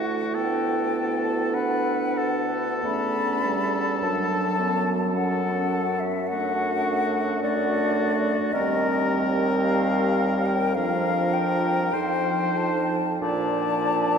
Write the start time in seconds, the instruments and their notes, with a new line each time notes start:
Already playing: bassoon D2, french horn A3, clarinet E4, oboe F#4
0.34 french horn B3, oboe A4, flute G5
1.24 flute A5
1.53 clarinet D4, oboe B4, flute F#5
2.18 oboe A4
2.84 bassoon E2, french horn A3, clarinet C#4, flute B5
3.45 french horn G3
4.02 bassoon F#2, french horn F#3, clarinet D4, flute A5
4.58 clarinet B3
5.14 clarinet C#4, oboe A4, flute F#5
6.00 flute E5
6.27 french horn A3, clarinet D4, oboe F#4, flute F#5
7.42 french horn A3, clarinet D4, oboe F#4, flute D5
8.53 bassoon D#2, french horn G3, clarinet C4, oboe A#4, flute D#5
9.63 flute F5
10.46 flute G5
10.75 bassoon F2, french horn F3, clarinet D4, oboe A#4, flute F5
11.34 flute G5
11.93 bassoon F2, french horn F3, clarinet D#4, oboe C5
12.57 flute A5
13.21 bassoon A#2, french horn F3, clarinet D4, oboe D5, flute A5